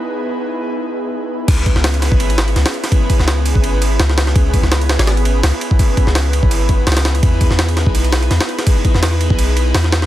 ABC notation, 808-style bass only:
X:1
M:4/4
L:1/16
Q:"Swing 16ths" 1/4=167
K:C#m
V:1 name="808-style bass" clef=bass
z16 | C,,3 C,,4 G,,,4- G,,, C,, z3 | z3 C,,4 G,,,4- G,,, C,,4 | C,,3 C,,4 G,,,4- G,,, C,, z3 |
z3 C,,4 G,,,4- G,,, C,,4 | E,,3 E,,4 B,,,4- B,,, E,, z3 | z3 E,,4 B,,,4- B,,, E,,4 |]